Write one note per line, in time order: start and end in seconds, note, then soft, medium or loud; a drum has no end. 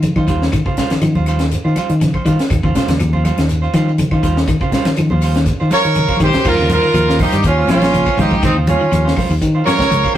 0.02 0.18 C#3 medium
0.02 closed hi-hat medium
0.02 high conga medium
0.02 shekere medium
0.16 0.25 D#3 medium
0.16 0.27 C#4 soft
0.16 0.27 F4 soft
0.16 0.28 C5 medium
0.16 kick medium
0.16 high conga medium
0.16 claves medium
0.16 shekere soft
0.28 0.47 D#2 loud
0.28 0.43 D#3 medium
0.28 0.43 G3 medium
0.28 0.44 C#4 medium
0.28 0.44 F4 medium
0.28 0.44 C5 medium
0.28 kick medium
0.28 closed hi-hat medium
0.28 shekere medium
0.41 snare medium
0.41 shekere soft
0.52 0.61 D#3 medium
0.52 kick medium
0.52 closed hi-hat medium
0.52 low conga medium
0.52 claves medium
0.52 shekere medium
0.66 0.81 C#3 medium
0.66 0.77 C#4 soft
0.66 0.77 F4 medium
0.66 0.77 C5 medium
0.66 kick medium
0.66 shekere soft
0.77 0.93 G3 medium
0.77 0.93 C#4 medium
0.77 0.93 F4 medium
0.77 0.93 C5 medium
0.77 snare medium
0.77 closed hi-hat soft
0.77 low conga medium
0.77 shekere medium
0.90 0.98 D#3 medium
0.90 snare medium
0.90 closed hi-hat medium
0.90 high conga medium
0.90 shekere soft
1.01 1.12 D#3 medium
1.01 1.17 F3 medium
1.01 closed hi-hat medium
1.01 high conga soft
1.01 claves medium
1.01 shekere medium
1.15 1.54 D#2 medium
1.15 1.26 C#4 soft
1.15 1.26 F4 soft
1.15 1.27 C5 medium
1.15 high conga medium
1.15 shekere soft
1.26 1.42 G3 medium
1.26 1.42 C#4 medium
1.26 1.43 F4 medium
1.26 1.43 C5 medium
1.26 closed hi-hat medium
1.26 claves medium
1.26 shekere medium
1.39 muted clean electric guitar stroke medium
1.39 snare medium
1.39 closed hi-hat soft
1.51 closed hi-hat medium
1.51 high conga soft
1.51 shekere medium
1.65 1.74 D#3 medium
1.65 1.76 C#4 soft
1.65 1.76 F4 soft
1.65 1.76 C5 medium
1.65 shekere soft
1.76 1.92 G3 medium
1.76 1.92 C#4 medium
1.76 1.92 F4 medium
1.76 1.92 C5 medium
1.76 closed hi-hat soft
1.76 high conga medium
1.76 claves medium
1.76 shekere medium
1.89 2.09 D#3 medium
1.89 closed hi-hat soft
1.89 shekere soft
2.01 2.16 C#3 medium
2.01 snare soft
2.01 closed hi-hat medium
2.01 high conga medium
2.01 shekere medium
2.14 2.24 C#4 soft
2.14 2.25 C5 soft
2.14 muted fingered electric bass stroke soft
2.14 kick medium
2.14 high conga medium
2.14 claves medium
2.14 shekere soft
2.25 2.36 D#3 medium
2.25 2.41 D#3 medium
2.25 2.41 G3 soft
2.25 2.41 C#4 medium
2.25 2.41 F4 medium
2.25 2.41 C5 medium
2.25 kick medium
2.25 closed hi-hat soft
2.25 high conga soft
2.25 shekere medium
2.39 muted fingered electric bass stroke soft
2.39 snare medium
2.39 closed hi-hat soft
2.39 shekere soft
2.50 2.61 D#2 medium
2.50 muted clean electric guitar stroke medium
2.50 kick medium
2.50 closed hi-hat medium
2.50 low conga medium
2.50 claves medium
2.50 shekere medium
2.63 2.73 D#2 medium
2.63 2.79 C#3 medium
2.63 2.74 C#4 soft
2.63 2.75 F4 medium
2.63 2.75 C5 medium
2.63 kick medium
2.63 shekere soft
2.75 2.91 G3 medium
2.75 2.91 C#4 medium
2.75 2.91 F4 medium
2.75 2.91 C5 medium
2.75 snare medium
2.75 closed hi-hat soft
2.75 low conga medium
2.75 shekere medium
2.88 2.97 D#2 medium
2.88 2.96 C#3 medium
2.88 snare medium
2.88 closed hi-hat soft
2.88 high conga medium
2.88 shekere soft
3.00 3.30 D#2 medium
3.00 3.15 F3 medium
3.00 closed hi-hat medium
3.00 high conga soft
3.00 claves medium
3.00 shekere medium
3.13 3.23 C#4 soft
3.13 3.24 F4 medium
3.13 3.24 C5 medium
3.13 high conga medium
3.13 shekere soft
3.24 3.40 G3 medium
3.24 3.40 C#4 medium
3.24 3.40 F4 medium
3.24 3.40 C5 medium
3.24 closed hi-hat soft
3.24 high conga medium
3.24 claves medium
3.24 shekere medium
3.37 3.66 D#2 medium
3.37 3.53 D#3 medium
3.37 snare medium
3.37 closed hi-hat soft
3.37 shekere soft
3.49 closed hi-hat medium
3.49 high conga soft
3.49 shekere medium
3.62 3.73 C#4 soft
3.62 3.73 F4 medium
3.62 3.74 C5 medium
3.62 shekere soft
3.74 4.04 D#3 medium
3.74 3.89 F3 medium
3.74 3.89 G3 medium
3.74 3.89 C#4 medium
3.74 3.90 F4 medium
3.74 3.90 C5 medium
3.74 closed hi-hat medium
3.74 high conga medium
3.74 claves medium
3.74 shekere medium
3.88 shekere soft
3.98 4.14 C#3 medium
3.98 closed hi-hat medium
3.98 high conga medium
3.98 shekere medium
4.11 4.21 D#3 medium
4.11 4.22 C#4 soft
4.11 4.22 F4 medium
4.11 4.22 C5 medium
4.11 kick medium
4.11 claves medium
4.11 shekere soft
4.23 4.43 D#2 loud
4.23 4.38 D#3 medium
4.23 4.38 G3 medium
4.23 4.38 C#4 medium
4.23 4.39 F4 medium
4.23 4.39 C5 medium
4.23 kick medium
4.23 closed hi-hat medium
4.23 high conga soft
4.23 shekere medium
4.37 snare medium
4.37 shekere soft
4.48 4.56 D#3 medium
4.48 kick medium
4.48 closed hi-hat medium
4.48 low conga medium
4.48 claves medium
4.48 shekere medium
4.61 4.76 C#3 medium
4.61 4.72 C#4 soft
4.61 4.72 F4 medium
4.61 4.73 C5 medium
4.61 kick medium
4.61 shekere soft
4.72 4.88 G3 medium
4.72 4.88 C#4 medium
4.72 4.89 F4 medium
4.72 4.89 C5 medium
4.72 snare medium
4.72 closed hi-hat medium
4.72 low conga medium
4.72 shekere medium
4.85 4.93 D#3 medium
4.85 snare medium
4.85 closed hi-hat medium
4.85 high conga medium
4.85 shekere soft
4.96 5.08 D#3 medium
4.96 5.13 F3 medium
4.96 closed hi-hat medium
4.96 high conga soft
4.96 claves medium
4.96 shekere medium
5.10 5.50 D#2 medium
5.10 5.22 C#4 soft
5.10 5.22 F4 soft
5.10 5.22 C5 medium
5.10 high conga medium
5.10 shekere soft
5.21 5.38 G3 medium
5.21 5.38 C#4 medium
5.21 5.38 F4 medium
5.21 5.38 C5 medium
5.21 open hi-hat medium
5.21 claves medium
5.21 shekere medium
5.35 5.51 D#3 medium
5.35 snare medium
5.35 closed hi-hat medium
5.35 shekere soft
5.46 kick medium
5.46 closed hi-hat medium
5.46 high conga soft
5.46 shekere medium
5.60 5.70 D#3 medium
5.60 5.70 C#4 soft
5.60 5.70 F4 medium
5.60 5.70 C5 medium
5.60 shekere soft
5.70 5.87 F3 medium
5.70 5.86 G3 medium
5.70 5.87 C#4 medium
5.70 5.87 F4 medium
5.70 6.18 A#4 medium
5.70 5.87 C5 medium
5.70 6.18 C#5 loud
5.70 snare soft
5.70 closed hi-hat medium
5.70 high conga medium
5.70 claves medium
5.70 shekere medium
5.83 6.04 D#3 medium
5.83 closed hi-hat soft
5.83 shekere soft
5.95 6.11 C#3 medium
5.95 closed hi-hat medium
5.95 high conga medium
5.95 shekere medium
6.08 6.19 C#4 soft
6.08 6.19 F4 medium
6.08 6.20 C5 medium
6.08 muted fingered electric bass stroke soft
6.08 kick medium
6.08 high conga medium
6.08 claves medium
6.08 shekere soft
6.16 6.31 D#3 medium
6.16 6.36 G3 medium
6.16 6.36 C#4 medium
6.16 kick medium
6.16 closed hi-hat soft
6.16 high conga medium
6.16 shekere medium
6.21 6.36 D#3 medium
6.21 6.45 G4 medium
6.21 6.36 C5 medium
6.21 6.45 C5 loud
6.21 muted clean electric guitar stroke medium
6.26 low conga medium
6.33 muted fingered electric bass stroke soft
6.33 snare medium
6.33 closed hi-hat soft
6.33 low conga medium
6.33 shekere soft
6.44 6.56 D#2 loud
6.44 6.53 D#3 loud
6.44 6.58 G3 medium
6.44 6.57 C#4 medium
6.44 6.57 F4 medium
6.44 6.70 A#4 loud
6.44 6.56 C5 medium
6.44 kick medium
6.44 crash medium
6.44 claves medium
6.44 shekere medium
6.48 6.70 F4 medium
6.57 6.78 D#2 medium
6.57 6.74 C#3 medium
6.57 6.68 C#4 soft
6.57 6.69 F4 medium
6.57 6.69 C5 medium
6.57 snare soft
6.69 6.85 G3 medium
6.69 6.85 C#4 medium
6.69 6.86 F4 medium
6.69 7.18 A#4 loud
6.69 6.86 C5 medium
6.69 closed hi-hat medium
6.69 high conga loud
6.69 shekere medium
6.73 7.18 F4 medium
6.82 6.90 D#3 medium
6.82 shekere soft
6.93 7.24 D#2 loud
6.93 7.09 F3 medium
6.93 closed hi-hat medium
6.93 claves medium
6.93 shekere medium
7.07 7.18 C#4 soft
7.07 7.19 F4 medium
7.07 7.19 C5 medium
7.07 snare medium
7.18 7.35 G3 medium
7.18 7.35 C#4 medium
7.18 7.44 D#4 medium
7.18 7.35 F4 medium
7.18 7.35 C5 medium
7.18 kick medium
7.18 open hi-hat medium
7.18 high conga medium
7.18 low conga medium
7.18 claves medium
7.18 shekere soft
7.23 7.44 G4 loud
7.32 7.42 G2 loud
7.32 7.48 D#3 medium
7.32 closed hi-hat medium
7.32 shekere medium
7.43 7.69 D#2 medium
7.43 7.69 F4 medium
7.43 kick medium
7.43 closed hi-hat medium
7.43 shekere medium
7.47 7.69 C#4 medium
7.57 7.67 C#4 soft
7.57 7.67 F4 soft
7.57 7.68 C5 medium
7.67 8.08 A#1 medium
7.67 7.84 F3 medium
7.67 7.84 G3 medium
7.67 7.84 C#4 medium
7.67 7.84 F4 medium
7.67 8.16 F4 loud
7.67 7.85 C5 medium
7.67 snare medium
7.67 closed hi-hat medium
7.67 low conga medium
7.67 claves medium
7.67 shekere medium
7.73 8.17 C#4 medium
7.80 snare medium
7.80 closed hi-hat medium
7.80 high conga loud
7.80 shekere soft
7.92 8.08 C#3 medium
7.92 closed hi-hat medium
7.92 high conga medium
7.92 shekere medium
8.05 8.17 C#4 soft
8.05 8.17 F4 soft
8.05 8.17 C5 medium
8.05 kick medium
8.05 claves medium
8.05 shekere medium
8.17 8.56 C#2 medium
8.17 8.34 D#3 medium
8.17 8.33 G3 medium
8.17 8.34 C#4 medium
8.17 8.43 D#4 medium
8.17 8.34 F4 medium
8.17 8.42 G4 medium
8.17 8.34 C5 medium
8.17 kick medium
8.17 closed hi-hat medium
8.17 high conga medium
8.17 low conga medium
8.17 shekere soft
8.31 kick medium
8.31 high conga medium
8.42 8.51 D#3 loud
8.42 8.55 C4 medium
8.42 8.56 D#4 medium
8.42 kick loud
8.42 closed hi-hat medium
8.42 low conga medium
8.42 claves medium
8.42 shekere medium
8.55 8.75 D#2 medium
8.55 8.71 C#3 medium
8.55 8.66 C#4 soft
8.55 8.67 F4 soft
8.55 8.67 C5 medium
8.67 8.83 G3 medium
8.67 8.83 C#4 medium
8.67 9.14 C#4 medium
8.67 8.83 F4 medium
8.67 9.14 F4 medium
8.67 muted clean electric guitar stroke medium
8.67 closed hi-hat medium
8.67 high conga medium
8.67 shekere medium
8.80 8.88 D#3 medium
8.80 shekere soft
8.92 9.12 D#2 medium
8.92 9.07 F3 medium
8.92 closed hi-hat medium
8.92 claves medium
8.92 shekere medium
9.05 9.16 F4 soft
9.05 9.16 C5 soft
9.05 muted clean electric guitar stroke soft
9.05 snare medium
9.16 9.32 G3 medium
9.16 9.32 C#4 medium
9.16 9.33 F4 medium
9.16 9.33 C5 medium
9.16 kick medium
9.16 open hi-hat medium
9.16 high conga medium
9.16 low conga medium
9.16 claves medium
9.16 shekere soft
9.29 9.39 D#2 medium
9.29 9.45 D#3 medium
9.29 shekere medium
9.41 9.61 D#3 loud
9.41 kick medium
9.41 closed hi-hat medium
9.41 shekere medium
9.55 9.65 C#4 soft
9.55 9.65 F4 medium
9.55 9.66 C5 medium
9.65 9.81 F3 medium
9.65 9.81 G3 medium
9.65 9.82 F4 medium
9.65 10.12 A#4 medium
9.65 9.82 C5 medium
9.65 10.12 C#5 loud
9.65 muted clean electric guitar stroke medium
9.65 snare medium
9.65 closed hi-hat medium
9.65 claves medium
9.65 shekere medium
9.79 9.88 C#2 medium
9.79 snare medium
9.79 high conga loud
9.79 shekere soft
9.90 10.01 C#2 medium
9.90 10.06 C#3 medium
9.90 closed hi-hat medium
9.90 high conga medium
9.90 shekere loud
10.03 10.14 C#4 soft
10.03 10.15 F4 soft
10.03 10.15 C5 medium
10.03 kick medium
10.03 claves medium
10.03 shekere medium
10.14 10.18 C5 loud